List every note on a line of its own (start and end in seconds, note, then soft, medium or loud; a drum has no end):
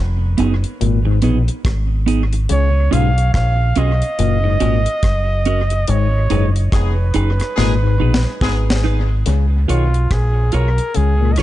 0.00 0.36 F1 medium
0.38 0.63 F#1 medium
0.38 0.52 B3 medium
0.38 0.53 D#4 medium
0.38 0.53 G#4 loud
0.38 closed hi-hat medium
0.64 closed hi-hat medium
0.81 1.22 G#1 medium
0.81 1.00 A#2 medium
0.81 closed hi-hat medium
1.05 1.19 G#2 medium
1.05 muted clean electric guitar stroke medium
1.22 1.48 A#1 medium
1.22 1.43 B2 medium
1.22 1.37 B3 medium
1.22 1.37 D#4 medium
1.22 1.38 G#4 medium
1.22 closed hi-hat medium
1.48 closed hi-hat medium
1.65 2.46 G#1 medium
1.65 kick loud
1.65 cross-stick loud
1.65 closed hi-hat medium
2.06 2.21 B3 medium
2.06 2.22 D#4 medium
2.06 2.22 G#4 medium
2.06 closed hi-hat medium
2.33 muted clean electric guitar stroke soft
2.33 closed hi-hat medium
2.49 2.91 C#2 loud
2.49 2.69 C#3 medium
2.49 2.94 C#5 loud
2.49 closed hi-hat loud
2.91 3.33 B1 loud
2.91 3.11 G#2 medium
2.91 3.06 C#4 medium
2.91 3.06 F4 medium
2.91 3.07 G#4 medium
2.91 3.33 F5 loud
2.91 closed hi-hat medium
3.18 closed hi-hat soft
3.34 3.75 A#1 medium
3.34 3.79 F5 loud
3.34 kick loud
3.34 cross-stick loud
3.34 closed hi-hat medium
3.76 4.01 B1 medium
3.76 3.91 C#4 medium
3.76 3.91 F4 medium
3.76 3.92 G#4 loud
3.76 5.91 D#5 loud
3.76 closed hi-hat medium
4.02 closed hi-hat medium
4.19 4.60 F#1 loud
4.19 4.38 A#2 medium
4.19 closed hi-hat medium
4.44 4.57 G#2 medium
4.44 muted clean electric guitar stroke medium
4.60 4.86 G#1 medium
4.60 4.81 A#2 medium
4.60 4.75 C#4 medium
4.60 4.75 F#4 medium
4.60 4.76 A#4 medium
4.60 closed hi-hat medium
4.86 closed hi-hat medium
5.03 5.84 F#1 medium
5.03 kick loud
5.03 cross-stick loud
5.03 closed hi-hat medium
5.45 5.60 C#4 medium
5.45 5.61 F#4 medium
5.45 5.61 A#4 medium
5.45 closed hi-hat medium
5.70 muted clean electric guitar stroke soft
5.70 closed hi-hat medium
5.88 6.29 G#1 loud
5.88 6.08 G#2 medium
5.88 6.50 C#5 loud
5.88 closed hi-hat loud
6.30 6.71 F#1 medium
6.30 6.50 G#2 medium
6.30 6.45 D#4 medium
6.30 6.45 G#4 medium
6.30 6.45 B4 medium
6.30 closed hi-hat medium
6.56 closed hi-hat soft
6.72 7.13 F1 medium
6.72 6.94 G#3 medium
6.72 6.94 B3 medium
6.72 6.94 D#4 medium
6.72 6.94 G#4 medium
6.72 8.82 B4 medium
6.72 kick loud
6.72 cross-stick loud
6.72 closed hi-hat medium
7.14 7.40 F#1 medium
7.14 7.29 D#4 medium
7.14 7.30 G#4 loud
7.14 7.30 B4 medium
7.14 closed hi-hat medium
7.40 cross-stick medium
7.40 closed hi-hat medium
7.56 7.98 G#1 loud
7.56 7.77 A#2 medium
7.56 7.73 G#3 medium
7.56 7.73 B3 medium
7.56 7.73 D#4 medium
7.56 7.73 G#4 loud
7.56 snare medium
7.83 7.96 G#2 medium
8.00 8.25 A#1 medium
8.00 8.19 B2 medium
8.00 8.14 D#4 medium
8.00 8.15 G#4 medium
8.00 8.15 B4 medium
8.14 snare medium
8.41 9.23 G#1 medium
8.41 9.06 G#3 medium
8.41 9.06 B3 medium
8.41 9.06 D#4 medium
8.41 9.06 G#4 loud
8.41 kick loud
8.41 snare medium
8.70 snare loud
8.84 8.99 D#4 medium
8.84 8.99 G#4 medium
8.84 8.99 B4 medium
9.09 muted clean electric guitar stroke soft
9.26 9.67 C#2 loud
9.26 9.46 C#3 medium
9.26 closed hi-hat loud
9.68 10.10 B1 medium
9.68 9.88 D#3 medium
9.68 9.83 F4 medium
9.68 10.14 F4 medium
9.68 9.83 G#4 medium
9.68 9.84 C#5 medium
9.68 closed hi-hat medium
9.94 closed hi-hat soft
10.11 10.52 A#1 medium
10.11 10.56 G#4 medium
10.11 kick loud
10.11 cross-stick loud
10.11 closed hi-hat medium
10.52 10.78 B1 medium
10.52 10.68 F4 medium
10.52 10.68 G#4 medium
10.52 10.97 A#4 medium
10.52 10.68 C#5 medium
10.52 closed hi-hat medium
10.78 closed hi-hat medium
10.95 11.37 C#2 loud
10.95 11.15 C#3 medium
10.95 11.34 G#4 loud
10.95 closed hi-hat medium
11.21 11.34 A#2 medium
11.32 11.40 D#5 medium
11.32 closed hi-hat medium
11.38 11.43 D#2 medium
11.38 11.43 G#2 medium
11.38 11.43 F4 medium
11.38 11.43 G#4 medium
11.38 11.43 C#5 loud
11.38 cross-stick medium